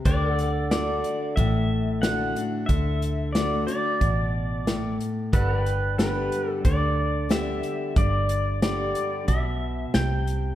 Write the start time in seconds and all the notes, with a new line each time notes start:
0.05 D2 D3 B4 D5 G5, kick, closed hi-hat
0.27 A4 F#5
0.39 closed hi-hat
0.71 D3 A3 D4 F#4 D5, snare, closed hi-hat
1.04 closed hi-hat
1.36 A1 A2 E5, kick, closed hi-hat
2.02 D3 A3 D4 F#4 F#5, snare, closed hi-hat
2.35 D4 F#4, closed hi-hat
2.66 D2 D3 E5, kick, closed hi-hat
3.02 closed hi-hat
3.33 D3 A3 D4 F#4 D5, snare, closed hi-hat
3.67 D4 F#4 D5, closed hi-hat
4.01 A1 B2, kick, closed hi-hat
4.67 A2, snare, closed hi-hat
5.01 closed hi-hat
5.33 G1 G2 A4 B4 D5 F#5, kick, closed hi-hat
5.55 B4 G5
5.66 closed hi-hat
5.98 D3 G3 B3 G4 B4, snare, closed hi-hat
6.32 closed hi-hat
6.50 A4
6.65 D2 D3 D5, kick, closed hi-hat
7.29 D3 G3 B3 G4 E5, snare, closed hi-hat
7.63 closed hi-hat
7.96 G1 G2 D5, kick, closed hi-hat
8.29 closed hi-hat
8.62 D3 G3 B3 G4 D5, snare, closed hi-hat
8.95 closed hi-hat
9.28 B1 B2 E5, kick, closed hi-hat
9.94 C2 C3 G5, snare, closed hi-hat
10.27 closed hi-hat